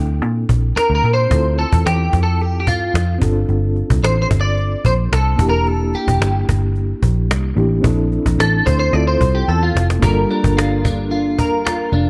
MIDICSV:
0, 0, Header, 1, 6, 480
1, 0, Start_track
1, 0, Tempo, 544465
1, 1155, Time_signature, 4, 2, 24, 8
1, 10665, End_track
2, 0, Start_track
2, 0, Title_t, "Clean electric guitar"
2, 0, Program_c, 0, 27
2, 673, Note_on_c, 0, 70, 89
2, 827, Note_off_c, 0, 70, 0
2, 838, Note_on_c, 0, 70, 91
2, 985, Note_off_c, 0, 70, 0
2, 1001, Note_on_c, 0, 72, 105
2, 1395, Note_off_c, 0, 72, 0
2, 1399, Note_on_c, 0, 69, 93
2, 1637, Note_off_c, 0, 69, 0
2, 1640, Note_on_c, 0, 67, 85
2, 1936, Note_off_c, 0, 67, 0
2, 1966, Note_on_c, 0, 69, 82
2, 2128, Note_off_c, 0, 69, 0
2, 2128, Note_on_c, 0, 67, 86
2, 2282, Note_off_c, 0, 67, 0
2, 2293, Note_on_c, 0, 67, 64
2, 2355, Note_off_c, 0, 67, 0
2, 2361, Note_on_c, 0, 65, 74
2, 2805, Note_off_c, 0, 65, 0
2, 3559, Note_on_c, 0, 72, 89
2, 3710, Note_off_c, 0, 72, 0
2, 3720, Note_on_c, 0, 72, 91
2, 3764, Note_off_c, 0, 72, 0
2, 3885, Note_on_c, 0, 74, 101
2, 4281, Note_off_c, 0, 74, 0
2, 4284, Note_on_c, 0, 72, 98
2, 4348, Note_off_c, 0, 72, 0
2, 4531, Note_on_c, 0, 69, 95
2, 4840, Note_off_c, 0, 69, 0
2, 4844, Note_on_c, 0, 70, 87
2, 5004, Note_off_c, 0, 70, 0
2, 5004, Note_on_c, 0, 69, 96
2, 5244, Note_on_c, 0, 67, 80
2, 5247, Note_off_c, 0, 69, 0
2, 5687, Note_off_c, 0, 67, 0
2, 7408, Note_on_c, 0, 69, 88
2, 7626, Note_off_c, 0, 69, 0
2, 7635, Note_on_c, 0, 72, 94
2, 7743, Note_off_c, 0, 72, 0
2, 7753, Note_on_c, 0, 72, 87
2, 7874, Note_off_c, 0, 72, 0
2, 7874, Note_on_c, 0, 74, 109
2, 7997, Note_off_c, 0, 74, 0
2, 8000, Note_on_c, 0, 72, 99
2, 8241, Note_on_c, 0, 67, 85
2, 8246, Note_off_c, 0, 72, 0
2, 8362, Note_off_c, 0, 67, 0
2, 8363, Note_on_c, 0, 69, 93
2, 8483, Note_off_c, 0, 69, 0
2, 8488, Note_on_c, 0, 65, 74
2, 8705, Note_off_c, 0, 65, 0
2, 8847, Note_on_c, 0, 55, 88
2, 8852, Note_on_c, 0, 70, 71
2, 9086, Note_on_c, 0, 62, 61
2, 9318, Note_on_c, 0, 65, 63
2, 9553, Note_off_c, 0, 62, 0
2, 9564, Note_on_c, 0, 62, 63
2, 9793, Note_off_c, 0, 65, 0
2, 9797, Note_on_c, 0, 65, 62
2, 10029, Note_off_c, 0, 70, 0
2, 10039, Note_on_c, 0, 70, 67
2, 10269, Note_off_c, 0, 65, 0
2, 10272, Note_on_c, 0, 65, 63
2, 10505, Note_off_c, 0, 62, 0
2, 10516, Note_on_c, 0, 62, 60
2, 10665, Note_off_c, 0, 55, 0
2, 10665, Note_off_c, 0, 62, 0
2, 10665, Note_off_c, 0, 65, 0
2, 10665, Note_off_c, 0, 70, 0
2, 10665, End_track
3, 0, Start_track
3, 0, Title_t, "Reed electric piano"
3, 0, Program_c, 1, 4
3, 0, Control_c, 1, 64, 127
3, 0, Note_on_c, 1, 60, 58
3, 0, Note_on_c, 1, 62, 55
3, 0, Note_on_c, 1, 64, 56
3, 0, Note_on_c, 1, 69, 60
3, 1106, Note_off_c, 1, 60, 0
3, 1113, Note_off_c, 1, 62, 0
3, 1121, Note_off_c, 1, 64, 0
3, 1128, Note_off_c, 1, 69, 0
3, 1128, Note_on_c, 1, 60, 63
3, 1143, Note_on_c, 1, 64, 54
3, 1155, Note_on_c, 1, 65, 51
3, 1168, Control_c, 1, 64, 0
3, 1172, Note_on_c, 1, 69, 68
3, 1307, Control_c, 1, 64, 127
3, 2788, Note_off_c, 1, 60, 0
3, 2796, Note_off_c, 1, 64, 0
3, 2802, Note_off_c, 1, 65, 0
3, 2806, Note_on_c, 1, 60, 65
3, 2811, Note_off_c, 1, 69, 0
3, 2821, Note_on_c, 1, 62, 60
3, 2835, Note_on_c, 1, 65, 62
3, 2849, Control_c, 1, 64, 0
3, 2852, Note_on_c, 1, 69, 74
3, 3010, Control_c, 1, 64, 127
3, 4707, Note_off_c, 1, 60, 0
3, 4714, Note_off_c, 1, 62, 0
3, 4721, Note_off_c, 1, 65, 0
3, 4725, Note_on_c, 1, 58, 69
3, 4729, Note_off_c, 1, 69, 0
3, 4739, Note_on_c, 1, 62, 59
3, 4754, Note_on_c, 1, 64, 64
3, 4768, Control_c, 1, 64, 0
3, 4771, Note_on_c, 1, 67, 74
3, 4903, Control_c, 1, 64, 127
3, 6626, Note_off_c, 1, 58, 0
3, 6633, Note_off_c, 1, 62, 0
3, 6640, Note_off_c, 1, 64, 0
3, 6649, Note_off_c, 1, 67, 0
3, 6660, Note_on_c, 1, 58, 60
3, 6666, Note_on_c, 1, 62, 56
3, 6675, Note_on_c, 1, 64, 57
3, 6681, Note_on_c, 1, 67, 66
3, 6885, Note_on_c, 1, 60, 72
3, 6888, Note_off_c, 1, 62, 0
3, 6899, Note_on_c, 1, 62, 65
3, 6907, Note_off_c, 1, 64, 0
3, 6908, Note_off_c, 1, 58, 0
3, 6918, Note_on_c, 1, 64, 64
3, 6919, Note_off_c, 1, 67, 0
3, 6929, Control_c, 1, 64, 0
3, 6930, Note_on_c, 1, 69, 80
3, 7101, Control_c, 1, 64, 127
3, 7841, Note_off_c, 1, 60, 0
3, 7848, Note_off_c, 1, 62, 0
3, 7851, Note_on_c, 1, 60, 61
3, 7853, Note_off_c, 1, 64, 0
3, 7863, Note_on_c, 1, 64, 58
3, 7864, Note_off_c, 1, 69, 0
3, 7879, Note_on_c, 1, 65, 62
3, 7888, Control_c, 1, 64, 0
3, 7894, Note_on_c, 1, 69, 70
3, 8024, Control_c, 1, 64, 127
3, 8804, Note_off_c, 1, 60, 0
3, 8810, Note_off_c, 1, 64, 0
3, 8812, Note_on_c, 1, 58, 72
3, 8818, Note_off_c, 1, 65, 0
3, 8826, Note_off_c, 1, 69, 0
3, 8829, Note_on_c, 1, 62, 67
3, 8842, Note_on_c, 1, 65, 68
3, 8849, Control_c, 1, 64, 0
3, 8858, Note_on_c, 1, 69, 75
3, 9003, Control_c, 1, 64, 127
3, 10665, Note_off_c, 1, 58, 0
3, 10665, Note_off_c, 1, 62, 0
3, 10665, Note_off_c, 1, 65, 0
3, 10665, Note_off_c, 1, 69, 0
3, 10665, End_track
4, 0, Start_track
4, 0, Title_t, "Picked electric bass"
4, 0, Program_c, 2, 34
4, 0, Note_on_c, 2, 38, 85
4, 192, Note_off_c, 2, 38, 0
4, 192, Note_on_c, 2, 46, 87
4, 385, Note_off_c, 2, 46, 0
4, 434, Note_on_c, 2, 34, 85
4, 626, Note_off_c, 2, 34, 0
4, 791, Note_on_c, 2, 38, 75
4, 888, Note_off_c, 2, 38, 0
4, 917, Note_on_c, 2, 46, 90
4, 1108, Note_off_c, 2, 46, 0
4, 1154, Note_on_c, 2, 38, 99
4, 1443, Note_off_c, 2, 38, 0
4, 1522, Note_on_c, 2, 40, 84
4, 1615, Note_off_c, 2, 40, 0
4, 1643, Note_on_c, 2, 40, 91
4, 1832, Note_off_c, 2, 40, 0
4, 1880, Note_on_c, 2, 41, 86
4, 2356, Note_off_c, 2, 41, 0
4, 2356, Note_on_c, 2, 43, 95
4, 2548, Note_off_c, 2, 43, 0
4, 2593, Note_on_c, 2, 41, 81
4, 2786, Note_off_c, 2, 41, 0
4, 2837, Note_on_c, 2, 31, 94
4, 3029, Note_off_c, 2, 31, 0
4, 3074, Note_on_c, 2, 31, 95
4, 3363, Note_off_c, 2, 31, 0
4, 3443, Note_on_c, 2, 36, 88
4, 3536, Note_off_c, 2, 36, 0
4, 3553, Note_on_c, 2, 33, 86
4, 3747, Note_off_c, 2, 33, 0
4, 3797, Note_on_c, 2, 31, 85
4, 4181, Note_off_c, 2, 31, 0
4, 4275, Note_on_c, 2, 34, 97
4, 4468, Note_off_c, 2, 34, 0
4, 4516, Note_on_c, 2, 36, 85
4, 4708, Note_off_c, 2, 36, 0
4, 4752, Note_on_c, 2, 28, 93
4, 5234, Note_off_c, 2, 28, 0
4, 5357, Note_on_c, 2, 28, 86
4, 5453, Note_off_c, 2, 28, 0
4, 5471, Note_on_c, 2, 31, 88
4, 5665, Note_off_c, 2, 31, 0
4, 5722, Note_on_c, 2, 31, 84
4, 6104, Note_off_c, 2, 31, 0
4, 6194, Note_on_c, 2, 34, 90
4, 6436, Note_off_c, 2, 34, 0
4, 6436, Note_on_c, 2, 36, 85
4, 6628, Note_off_c, 2, 36, 0
4, 6671, Note_on_c, 2, 33, 85
4, 6865, Note_off_c, 2, 33, 0
4, 6913, Note_on_c, 2, 34, 109
4, 7203, Note_off_c, 2, 34, 0
4, 7280, Note_on_c, 2, 34, 90
4, 7375, Note_off_c, 2, 34, 0
4, 7393, Note_on_c, 2, 33, 97
4, 7587, Note_off_c, 2, 33, 0
4, 7639, Note_on_c, 2, 38, 85
4, 7830, Note_off_c, 2, 38, 0
4, 7874, Note_on_c, 2, 38, 100
4, 8067, Note_off_c, 2, 38, 0
4, 8114, Note_on_c, 2, 36, 89
4, 8307, Note_off_c, 2, 36, 0
4, 8358, Note_on_c, 2, 40, 85
4, 8550, Note_off_c, 2, 40, 0
4, 8599, Note_on_c, 2, 29, 88
4, 8790, Note_off_c, 2, 29, 0
4, 8837, Note_on_c, 2, 31, 90
4, 9029, Note_off_c, 2, 31, 0
4, 9205, Note_on_c, 2, 31, 94
4, 10484, Note_off_c, 2, 31, 0
4, 10512, Note_on_c, 2, 29, 83
4, 10665, Note_off_c, 2, 29, 0
4, 10665, End_track
5, 0, Start_track
5, 0, Title_t, "Cajon"
5, 192, Note_on_c, 9, 38, 44
5, 280, Note_off_c, 9, 38, 0
5, 433, Note_on_c, 9, 36, 80
5, 522, Note_off_c, 9, 36, 0
5, 681, Note_on_c, 9, 38, 102
5, 769, Note_off_c, 9, 38, 0
5, 914, Note_on_c, 9, 38, 42
5, 1002, Note_off_c, 9, 38, 0
5, 1154, Note_on_c, 9, 36, 111
5, 1242, Note_off_c, 9, 36, 0
5, 1401, Note_on_c, 9, 38, 37
5, 1490, Note_off_c, 9, 38, 0
5, 1521, Note_on_c, 9, 36, 89
5, 1609, Note_off_c, 9, 36, 0
5, 1645, Note_on_c, 9, 38, 98
5, 1733, Note_off_c, 9, 38, 0
5, 1879, Note_on_c, 9, 36, 89
5, 1880, Note_on_c, 9, 38, 34
5, 1967, Note_off_c, 9, 36, 0
5, 1968, Note_off_c, 9, 38, 0
5, 2115, Note_on_c, 9, 38, 48
5, 2203, Note_off_c, 9, 38, 0
5, 2355, Note_on_c, 9, 36, 83
5, 2443, Note_off_c, 9, 36, 0
5, 2603, Note_on_c, 9, 38, 116
5, 2691, Note_off_c, 9, 38, 0
5, 2835, Note_on_c, 9, 36, 101
5, 2923, Note_off_c, 9, 36, 0
5, 3073, Note_on_c, 9, 38, 51
5, 3161, Note_off_c, 9, 38, 0
5, 3317, Note_on_c, 9, 38, 35
5, 3405, Note_off_c, 9, 38, 0
5, 3440, Note_on_c, 9, 36, 90
5, 3528, Note_off_c, 9, 36, 0
5, 3565, Note_on_c, 9, 38, 107
5, 3653, Note_off_c, 9, 38, 0
5, 3797, Note_on_c, 9, 36, 99
5, 3800, Note_on_c, 9, 38, 35
5, 3886, Note_off_c, 9, 36, 0
5, 3888, Note_off_c, 9, 38, 0
5, 4031, Note_on_c, 9, 38, 45
5, 4119, Note_off_c, 9, 38, 0
5, 4273, Note_on_c, 9, 36, 81
5, 4361, Note_off_c, 9, 36, 0
5, 4520, Note_on_c, 9, 38, 105
5, 4608, Note_off_c, 9, 38, 0
5, 4751, Note_on_c, 9, 36, 106
5, 4840, Note_off_c, 9, 36, 0
5, 4990, Note_on_c, 9, 38, 47
5, 5078, Note_off_c, 9, 38, 0
5, 5232, Note_on_c, 9, 38, 40
5, 5320, Note_off_c, 9, 38, 0
5, 5359, Note_on_c, 9, 36, 90
5, 5447, Note_off_c, 9, 36, 0
5, 5481, Note_on_c, 9, 38, 113
5, 5570, Note_off_c, 9, 38, 0
5, 5720, Note_on_c, 9, 36, 102
5, 5726, Note_on_c, 9, 38, 35
5, 5808, Note_off_c, 9, 36, 0
5, 5814, Note_off_c, 9, 38, 0
5, 5954, Note_on_c, 9, 38, 44
5, 6042, Note_off_c, 9, 38, 0
5, 6193, Note_on_c, 9, 36, 83
5, 6282, Note_off_c, 9, 36, 0
5, 6444, Note_on_c, 9, 38, 114
5, 6532, Note_off_c, 9, 38, 0
5, 6675, Note_on_c, 9, 38, 41
5, 6763, Note_off_c, 9, 38, 0
5, 6913, Note_on_c, 9, 36, 109
5, 7001, Note_off_c, 9, 36, 0
5, 7158, Note_on_c, 9, 38, 41
5, 7247, Note_off_c, 9, 38, 0
5, 7281, Note_on_c, 9, 36, 92
5, 7369, Note_off_c, 9, 36, 0
5, 7406, Note_on_c, 9, 38, 115
5, 7494, Note_off_c, 9, 38, 0
5, 7640, Note_on_c, 9, 36, 98
5, 7729, Note_off_c, 9, 36, 0
5, 7872, Note_on_c, 9, 38, 45
5, 7960, Note_off_c, 9, 38, 0
5, 8116, Note_on_c, 9, 36, 89
5, 8204, Note_off_c, 9, 36, 0
5, 8360, Note_on_c, 9, 38, 49
5, 8448, Note_off_c, 9, 38, 0
5, 8610, Note_on_c, 9, 38, 94
5, 8698, Note_off_c, 9, 38, 0
5, 8728, Note_on_c, 9, 38, 83
5, 8816, Note_off_c, 9, 38, 0
5, 8838, Note_on_c, 9, 36, 112
5, 8926, Note_off_c, 9, 36, 0
5, 9083, Note_on_c, 9, 38, 38
5, 9171, Note_off_c, 9, 38, 0
5, 9205, Note_on_c, 9, 36, 89
5, 9293, Note_off_c, 9, 36, 0
5, 9331, Note_on_c, 9, 38, 112
5, 9419, Note_off_c, 9, 38, 0
5, 9564, Note_on_c, 9, 36, 99
5, 9570, Note_on_c, 9, 38, 36
5, 9653, Note_off_c, 9, 36, 0
5, 9658, Note_off_c, 9, 38, 0
5, 9797, Note_on_c, 9, 38, 48
5, 9885, Note_off_c, 9, 38, 0
5, 10037, Note_on_c, 9, 36, 86
5, 10125, Note_off_c, 9, 36, 0
5, 10285, Note_on_c, 9, 38, 114
5, 10373, Note_off_c, 9, 38, 0
5, 10510, Note_on_c, 9, 38, 42
5, 10598, Note_off_c, 9, 38, 0
5, 10665, End_track
6, 0, Start_track
6, 0, Title_t, "Muted picked electric bass strokes"
6, 672, Note_on_c, 9, 29, 45
6, 760, Note_off_c, 9, 29, 0
6, 10665, End_track
0, 0, End_of_file